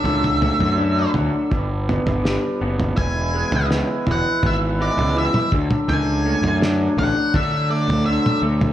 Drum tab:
SD |------------o---|----o-----------|----o-----------|
T2 |----------------|-------------o-o|-------------o-o|
FT |oooo--o-o-oo---o|o--o--o-o--o---o|o--o--o-o--o---o|
BD |--------o-------|o-------o-----o-|--------o-------|